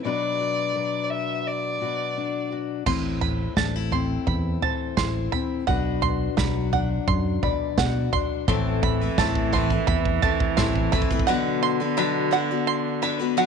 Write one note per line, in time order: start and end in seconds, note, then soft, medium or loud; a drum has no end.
0.04 1.80 B2 medium
0.04 0.74 F#3 soft
0.04 2.16 D4 medium
0.04 0.39 F#4 medium
0.04 0.75 B4 medium
0.04 1.04 D5 medium
0.41 1.80 F#4 soft
0.75 2.82 F#3 soft
0.75 2.83 B4 soft
1.04 1.11 D5 soft
1.10 1.48 E5 medium
1.46 2.52 D5 medium
1.81 2.82 B2 soft
1.81 2.51 F#4 soft
2.17 2.83 D4 soft
2.52 2.83 F#4 soft
2.86 3.46 A1 medium
2.86 5.63 A2 medium
2.86 3.92 C4 medium
2.86 3.56 E4 soft
2.86 3.21 C6 medium
2.86 kick soft
2.86 floor tom medium
2.86 crash medium
3.21 3.92 B5 medium
3.21 floor tom medium
3.56 4.16 A1 medium
3.56 5.63 A3 soft
3.56 3.76 D4 soft
3.56 4.61 A5 medium
3.56 kick soft
3.56 snare medium
3.56 floor tom medium
3.76 4.97 E4 soft
3.92 5.33 C4 soft
3.92 4.26 C6 medium
3.92 floor tom medium
4.27 4.57 E2 medium
4.27 4.97 B5 medium
4.27 kick medium
4.27 floor tom medium
4.62 5.64 E3 medium
4.62 5.64 C5 soft
4.62 5.67 A5 medium
4.62 floor tom medium
4.97 5.27 A1 medium
4.97 5.64 E4 soft
4.97 5.32 C6 medium
4.97 kick soft
4.97 snare medium
4.97 floor tom medium
5.32 5.64 C4 soft
5.32 5.68 B5 medium
5.32 floor tom medium
5.67 6.27 B1 medium
5.67 7.42 B2 medium
5.67 6.72 D4 medium
5.67 6.37 F#4 medium
5.67 6.04 B4 medium
5.67 6.72 F#5 medium
5.67 kick medium
5.67 floor tom medium
6.02 6.37 C6 medium
6.02 floor tom medium
6.37 6.98 B1 medium
6.37 8.44 F#3 medium
6.37 7.78 F#4 soft
6.37 7.07 B5 medium
6.37 kick medium
6.37 snare medium
6.37 floor tom medium
6.73 8.13 D4 soft
6.73 7.77 F#5 medium
6.73 floor tom medium
7.08 7.38 F#2 medium
7.08 7.42 C6 medium
7.08 kick medium
7.08 floor tom medium
7.43 8.44 B2 medium
7.43 8.44 D5 medium
7.43 8.12 B5 medium
7.43 kick medium
7.43 floor tom medium
7.78 8.08 B2 medium
7.78 8.45 F#4 medium
7.78 8.48 F#5 medium
7.78 kick medium
7.78 snare medium
7.78 floor tom medium
8.13 8.44 D4 soft
8.13 8.47 C6 medium
8.13 kick medium
8.13 floor tom medium
8.48 9.08 A1 medium
8.48 9.01 A2 medium
8.48 11.30 E3 loud
8.48 9.01 E3 medium
8.48 9.01 A3 medium
8.48 9.01 C4 medium
8.48 9.01 E4 medium
8.48 8.82 C6 medium
8.48 kick medium
8.48 floor tom medium
8.83 9.53 B5 medium
8.83 kick medium
8.83 floor tom medium
9.01 9.18 A3 soft
9.01 9.18 C4 soft
9.01 9.18 E4 soft
9.01 9.19 B4 medium
9.18 9.78 A1 medium
9.18 9.53 A2 medium
9.18 9.54 E3 medium
9.18 9.52 A3 medium
9.18 9.53 C4 medium
9.18 9.54 E4 loud
9.18 10.21 A5 medium
9.18 kick medium
9.18 snare loud
9.18 floor tom medium
9.35 kick loud
9.53 9.71 A3 medium
9.53 9.71 C4 medium
9.53 9.70 E4 medium
9.53 9.72 B4 medium
9.53 9.87 C6 medium
9.53 kick medium
9.53 floor tom medium
9.70 10.22 A3 soft
9.70 10.23 C4 soft
9.70 10.23 E4 soft
9.70 kick medium
9.87 10.18 E2 loud
9.87 10.56 B5 medium
9.87 kick loud
9.87 floor tom medium
10.05 kick medium
10.22 10.56 A3 medium
10.22 10.57 C4 medium
10.22 10.57 E4 medium
10.22 11.26 A5 medium
10.22 kick medium
10.22 floor tom medium
10.40 kick loud
10.57 10.88 A1 medium
10.57 10.93 A2 medium
10.57 10.93 E3 medium
10.57 10.91 A3 medium
10.57 10.93 C4 medium
10.57 10.93 E4 medium
10.57 10.92 C6 medium
10.57 kick medium
10.57 snare loud
10.57 floor tom medium
10.75 kick medium
10.92 11.11 A3 medium
10.92 11.11 C4 medium
10.92 11.10 E4 medium
10.92 11.09 B4 medium
10.92 11.28 B5 medium
10.92 kick loud
10.92 floor tom medium
11.02 kick loud
11.10 11.28 A3 medium
11.10 11.28 C4 medium
11.10 11.29 E4 medium
11.10 11.28 B4 medium
11.10 kick loud
11.19 kick loud
11.27 11.81 B2 medium
11.27 13.46 D3 loud
11.27 11.81 F#3 medium
11.27 11.81 B3 medium
11.27 11.80 D4 medium
11.27 11.79 F#4 medium
11.27 11.79 B4 medium
11.27 12.31 F#5 medium
11.63 11.97 C6 medium
11.80 11.96 B3 soft
11.80 11.97 D4 soft
11.80 11.97 F#4 soft
11.80 11.98 B4 medium
11.97 12.33 B2 medium
11.97 12.33 F#3 medium
11.97 12.30 B3 medium
11.97 12.31 D4 loud
11.97 12.31 F#4 medium
11.97 12.67 B5 medium
12.31 12.50 B3 medium
12.31 12.50 D4 medium
12.31 12.50 F#4 medium
12.31 12.51 B4 medium
12.31 13.36 F#5 medium
12.51 13.01 B3 soft
12.51 13.02 D4 soft
12.51 13.02 F#4 medium
12.67 13.02 C6 medium
13.02 13.20 B3 medium
13.02 13.20 D4 medium
13.02 13.19 F#4 medium
13.02 13.18 B4 medium
13.02 13.46 B5 medium
13.19 13.36 B3 soft
13.19 13.37 D4 soft
13.19 13.37 F#4 medium
13.19 13.38 B4 soft
13.37 13.46 B2 medium
13.37 13.46 F#3 medium
13.37 13.46 B3 medium
13.37 13.46 D4 medium
13.37 13.46 F#4 medium
13.37 13.46 F#5 medium